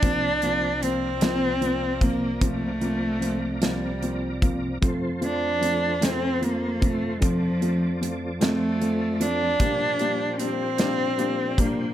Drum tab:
HH |xxxxxx|xxxxxx|xxxxxx|xxxxxx|
SD |---o--|---o--|---o--|---o--|
BD |o----o|o----o|o----o|o-----|

HH |xxxxxx|
SD |---o--|
BD |o----o|